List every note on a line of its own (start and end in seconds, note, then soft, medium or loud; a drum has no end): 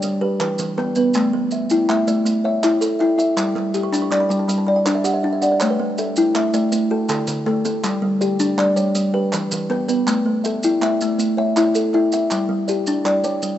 0.00 0.22 G3 medium
0.00 0.40 C#5 medium
0.00 0.22 D5 medium
0.00 maracas medium
0.21 0.78 G4 medium
0.21 0.77 B4 medium
0.40 0.77 E3 medium
0.40 0.77 B4 medium
0.40 clap medium
0.58 0.96 E3 medium
0.58 clap soft
0.58 maracas medium
0.78 1.15 B3 medium
0.78 1.33 B4 medium
0.78 clap soft
0.95 1.33 B3 medium
0.95 1.34 B4 medium
0.95 maracas soft
1.14 1.52 A3 medium
1.14 clap medium
1.14 maracas medium
1.33 1.71 A3 medium
1.51 2.08 E5 medium
1.51 maracas soft
1.70 2.08 E4 medium
1.70 maracas medium
1.89 2.24 A3 medium
1.89 2.44 E5 medium
1.89 clap medium
2.08 2.45 A3 medium
2.08 2.63 D5 medium
2.08 maracas medium
2.25 2.63 A3 medium
2.25 maracas medium
2.44 3.00 C#5 medium
2.44 3.01 E5 medium
2.63 3.00 E4 medium
2.63 2.98 E5 medium
2.63 clap medium
2.63 maracas medium
2.81 3.19 A4 medium
2.81 clap soft
2.81 maracas medium
2.99 3.38 E4 medium
2.99 3.56 E5 medium
2.99 clap soft
3.18 3.56 E4 medium
3.18 3.56 E5 medium
3.18 maracas medium
3.37 3.75 G3 medium
3.37 clap medium
3.37 maracas medium
3.55 3.93 G3 medium
3.55 clap soft
3.74 4.31 G4 medium
3.74 clap soft
3.74 maracas medium
3.83 4.01 C#6 medium
3.92 4.30 D4 medium
3.92 4.10 B5 medium
3.92 clap soft
3.92 maracas medium
4.02 4.20 C#6 medium
4.11 4.47 G3 medium
4.11 4.67 D5 medium
4.11 4.29 D6 medium
4.11 clap medium
4.20 4.38 B5 medium
4.29 4.68 G3 medium
4.29 4.47 G5 medium
4.29 maracas medium
4.39 4.57 A5 medium
4.48 4.86 G3 medium
4.48 4.65 B5 medium
4.48 maracas medium
4.58 4.76 A5 medium
4.67 5.24 D5 medium
4.67 4.85 B5 medium
4.76 4.94 G5 medium
4.86 5.23 D4 medium
4.86 5.03 D5 medium
4.86 clap medium
4.86 maracas medium
4.95 5.12 E5 medium
5.04 5.42 G4 medium
5.04 5.22 F#5 medium
5.04 clap soft
5.04 maracas medium
5.14 5.31 E5 medium
5.23 5.61 D4 medium
5.23 5.41 D5 medium
5.33 5.50 E5 medium
5.42 5.79 D4 medium
5.42 5.80 D5 medium
5.42 5.59 F#5 medium
5.42 maracas medium
5.52 5.69 D5 medium
5.60 5.99 A3 medium
5.60 5.78 C#5 medium
5.60 clap medium
5.60 maracas medium
5.70 5.88 B4 medium
5.79 6.17 A3 medium
5.98 6.54 A4 medium
5.98 6.54 E5 medium
5.98 maracas medium
6.16 6.54 E4 medium
6.16 maracas medium
6.35 6.71 A3 medium
6.35 6.91 E5 medium
6.35 clap medium
6.54 6.72 A3 medium
6.54 7.10 D5 medium
6.54 maracas medium
6.72 6.91 A3 medium
6.72 maracas medium
6.90 7.47 F#4 medium
6.90 7.47 A4 medium
7.09 7.46 D3 medium
7.09 7.45 A4 medium
7.09 clap medium
7.09 maracas medium
7.27 7.65 D3 medium
7.27 clap soft
7.27 maracas medium
7.46 7.84 A3 medium
7.46 8.03 A4 medium
7.46 clap soft
7.65 8.03 A3 medium
7.65 8.03 A4 medium
7.65 maracas medium
7.84 8.21 G3 medium
7.84 clap medium
7.84 maracas medium
8.02 8.40 G3 medium
8.21 8.77 G4 medium
8.21 8.77 D5 medium
8.21 maracas medium
8.40 8.77 D4 medium
8.40 maracas medium
8.58 8.94 G3 medium
8.58 9.14 D5 medium
8.58 clap medium
8.76 8.95 G3 medium
8.76 9.33 C#5 medium
8.76 maracas medium
8.95 9.14 G3 medium
8.95 maracas medium
9.14 9.70 G4 medium
9.14 9.70 B4 medium
9.33 9.70 E3 medium
9.33 9.70 B4 medium
9.33 clap medium
9.33 maracas medium
9.51 9.89 E3 medium
9.51 clap soft
9.51 maracas medium
9.70 10.07 B3 medium
9.70 10.26 B4 medium
9.70 clap soft
9.88 10.26 B3 medium
9.88 10.26 B4 medium
9.88 maracas medium
10.07 10.44 A3 medium
10.07 clap medium
10.07 maracas medium
10.26 10.63 A3 medium
10.44 11.01 A4 medium
10.44 11.00 E5 medium
10.44 maracas medium
10.63 11.01 E4 medium
10.63 maracas medium
10.81 11.17 A3 medium
10.81 11.37 E5 medium
10.81 clap medium
11.01 11.38 A3 medium
11.01 maracas medium
11.18 11.56 A3 medium
11.18 maracas medium
11.37 11.93 C#5 medium
11.37 11.94 E5 medium
11.56 11.93 E4 medium
11.56 11.93 E5 medium
11.56 clap medium
11.56 maracas medium
11.75 12.12 A4 medium
11.75 clap soft
11.75 maracas medium
11.94 12.31 E4 medium
11.94 12.50 E5 medium
11.94 clap soft
12.12 12.50 E4 medium
12.12 12.50 E5 medium
12.12 maracas medium
12.31 12.68 G3 medium
12.31 clap medium
12.31 maracas medium
12.49 12.86 G3 medium
12.68 13.25 G4 medium
12.68 13.24 D5 medium
12.68 maracas medium
12.87 13.24 D4 medium
12.87 maracas medium
13.05 13.41 G3 medium
13.05 13.58 D5 medium
13.05 clap medium
13.24 13.58 G3 medium
13.24 13.58 C#5 medium
13.24 maracas medium
13.42 13.58 G3 medium
13.42 maracas medium